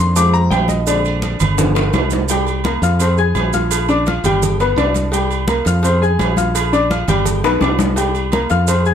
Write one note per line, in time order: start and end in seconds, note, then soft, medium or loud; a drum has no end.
0.00 0.48 F2 medium
0.00 0.13 D#3 medium
0.00 0.13 A#3 medium
0.00 0.14 D4 medium
0.00 0.16 C6 loud
0.16 0.67 F3 medium
0.16 0.67 G#3 medium
0.16 0.67 C4 medium
0.16 0.34 D6 loud
0.16 cowbell loud
0.16 low agogo medium
0.16 maracas loud
0.33 0.51 A#5 loud
0.33 high conga soft
0.33 maracas soft
0.51 1.35 A#1 loud
0.51 0.68 G5 loud
0.51 cowbell medium
0.51 high conga medium
0.51 low timbale medium
0.51 low agogo loud
0.51 maracas soft
0.68 0.86 D#5 medium
0.68 cowbell medium
0.68 high conga medium
0.68 maracas medium
0.87 1.54 D3 medium
0.87 1.55 G#3 soft
0.87 1.55 C4 medium
0.87 1.37 D5 medium
0.87 cowbell loud
0.87 low agogo loud
0.87 maracas loud
1.05 high conga soft
1.05 low agogo medium
1.05 maracas soft
1.22 cowbell medium
1.22 high conga medium
1.22 low timbale soft
1.22 low agogo medium
1.22 maracas soft
1.40 1.90 G1 medium
1.40 cowbell medium
1.40 high conga soft
1.40 low conga medium
1.40 low agogo loud
1.40 maracas medium
1.58 1.82 D3 medium
1.58 1.82 F3 medium
1.58 1.83 B3 medium
1.58 cowbell loud
1.58 high bongo medium
1.58 high conga soft
1.58 low conga medium
1.58 high timbale medium
1.58 maracas loud
1.75 cowbell medium
1.75 high bongo medium
1.75 high conga soft
1.75 high timbale medium
1.75 low agogo medium
1.75 maracas soft
1.93 2.77 C2 medium
1.93 cowbell medium
1.93 low bongo medium
1.93 high conga medium
1.93 low timbale loud
1.93 low agogo loud
1.93 maracas soft
2.10 cowbell medium
2.10 low bongo medium
2.10 high conga medium
2.10 low timbale medium
2.10 maracas medium
2.29 2.59 G3 medium
2.29 2.59 G4 medium
2.29 2.59 G5 medium
2.29 cowbell loud
2.29 high conga soft
2.29 low agogo medium
2.29 maracas loud
2.47 high conga soft
2.47 low agogo medium
2.47 maracas soft
2.64 2.80 A#3 medium
2.64 2.80 A#4 medium
2.64 2.80 A#5 medium
2.64 cowbell medium
2.64 high conga loud
2.64 low timbale medium
2.64 low agogo medium
2.64 maracas soft
2.82 3.32 F2 medium
2.82 2.97 F4 medium
2.82 2.97 F5 medium
2.82 2.98 F6 medium
2.82 cowbell medium
2.82 maracas medium
3.00 3.15 C4 medium
3.00 3.15 C5 medium
3.00 3.15 C6 medium
3.00 cowbell loud
3.00 high conga soft
3.00 low agogo medium
3.00 maracas medium
3.18 3.47 G#4 medium
3.18 3.47 G#5 medium
3.18 3.48 G#6 medium
3.18 high conga soft
3.18 maracas soft
3.35 4.18 A#1 medium
3.35 cowbell medium
3.35 high conga medium
3.35 low timbale medium
3.35 low agogo loud
3.35 maracas soft
3.53 3.83 F4 medium
3.53 3.83 F5 medium
3.53 3.83 F6 medium
3.53 cowbell medium
3.53 high conga medium
3.53 maracas medium
3.71 cowbell loud
3.71 high conga soft
3.71 low agogo loud
3.71 maracas loud
3.89 4.03 D4 medium
3.89 4.04 D5 medium
3.89 4.04 D6 medium
3.89 high conga soft
3.89 low agogo medium
3.89 maracas soft
4.06 4.21 F4 medium
4.06 4.22 F5 medium
4.06 4.22 F6 medium
4.06 cowbell medium
4.06 high conga loud
4.06 low timbale medium
4.06 low agogo medium
4.06 maracas soft
4.24 4.74 G1 medium
4.24 4.54 G3 medium
4.24 4.54 G4 medium
4.24 4.54 G5 medium
4.24 cowbell medium
4.24 high conga soft
4.24 low conga medium
4.24 low agogo loud
4.24 maracas medium
4.42 cowbell loud
4.42 high conga soft
4.42 low conga medium
4.42 maracas loud
4.60 4.75 B3 medium
4.60 4.75 B4 medium
4.60 4.75 B5 medium
4.60 cowbell medium
4.60 high conga soft
4.60 low agogo medium
4.60 maracas soft
4.76 5.60 C2 loud
4.76 5.07 D4 medium
4.76 5.07 D5 medium
4.76 5.07 D6 medium
4.76 cowbell medium
4.76 high conga medium
4.76 low timbale medium
4.76 low agogo loud
4.76 maracas soft
4.94 cowbell medium
4.94 high conga medium
4.94 maracas medium
5.12 5.42 G3 medium
5.12 5.42 G4 medium
5.12 5.42 G5 medium
5.12 cowbell loud
5.12 high conga soft
5.12 low agogo medium
5.12 maracas loud
5.30 high conga soft
5.30 low agogo medium
5.30 maracas soft
5.48 5.63 A#3 medium
5.48 5.63 A#4 medium
5.48 5.63 A#5 medium
5.48 cowbell medium
5.48 high conga loud
5.48 low timbale medium
5.48 low agogo medium
5.48 maracas soft
5.65 6.16 F2 loud
5.65 5.81 F4 medium
5.65 5.81 F5 medium
5.65 5.82 F6 medium
5.65 cowbell medium
5.65 maracas medium
5.83 5.99 C4 medium
5.83 5.99 C5 medium
5.83 5.99 C6 medium
5.83 cowbell loud
5.83 high conga soft
5.83 low agogo medium
5.83 maracas medium
6.02 6.31 G#4 medium
6.02 6.31 G#5 medium
6.02 6.31 G#6 medium
6.02 high conga soft
6.02 maracas soft
6.19 7.03 A#1 medium
6.19 cowbell medium
6.19 high conga medium
6.19 low timbale medium
6.19 low agogo loud
6.19 maracas soft
6.36 6.66 F4 medium
6.36 6.67 F5 medium
6.36 6.67 F6 medium
6.36 cowbell medium
6.36 high conga medium
6.36 maracas medium
6.55 cowbell loud
6.55 high conga soft
6.55 low agogo loud
6.55 maracas loud
6.73 6.87 D4 medium
6.73 6.88 D5 medium
6.73 6.88 D6 medium
6.73 high conga soft
6.73 low agogo medium
6.73 maracas soft
6.90 7.05 F4 medium
6.90 7.06 F5 medium
6.90 7.06 F6 medium
6.90 cowbell medium
6.90 high conga loud
6.90 low timbale medium
6.90 low agogo medium
6.90 maracas soft
7.08 7.41 G1 medium
7.08 7.38 G3 medium
7.08 7.38 G4 loud
7.08 7.38 G5 medium
7.08 cowbell medium
7.08 high conga soft
7.08 low conga medium
7.08 low agogo loud
7.08 maracas medium
7.25 cowbell loud
7.25 high conga soft
7.25 low conga medium
7.25 maracas medium
7.44 7.61 B1 medium
7.44 7.59 B3 medium
7.44 7.59 B4 medium
7.44 7.59 B5 medium
7.44 cowbell medium
7.44 high bongo loud
7.44 high conga soft
7.44 low agogo medium
7.44 maracas soft
7.61 8.45 C2 medium
7.61 7.91 D4 medium
7.61 7.91 D5 medium
7.61 7.91 D6 medium
7.61 cowbell medium
7.61 low bongo medium
7.61 high conga medium
7.61 low timbale medium
7.61 low agogo loud
7.61 maracas soft
7.79 cowbell medium
7.79 low bongo loud
7.79 high conga medium
7.79 maracas medium
7.96 8.26 G3 medium
7.96 8.26 G4 medium
7.96 8.27 G5 medium
7.96 cowbell loud
7.96 high conga soft
7.96 low agogo medium
7.96 maracas medium
8.15 high conga soft
8.15 low agogo medium
8.15 maracas soft
8.32 8.47 A#3 medium
8.32 8.48 A#4 medium
8.32 8.48 A#5 medium
8.32 cowbell medium
8.32 high conga loud
8.32 low timbale medium
8.32 low agogo loud
8.32 maracas soft
8.50 8.94 F2 loud
8.50 8.65 F4 medium
8.50 8.65 F5 medium
8.50 8.65 F6 medium
8.50 cowbell medium
8.50 maracas medium
8.67 8.83 C4 medium
8.67 8.83 C5 medium
8.67 8.83 C6 medium
8.67 cowbell loud
8.67 high conga soft
8.67 low agogo medium
8.67 maracas loud
8.86 8.94 G#4 medium
8.86 8.94 G#5 medium
8.86 8.94 G#6 medium
8.86 high conga soft
8.86 maracas soft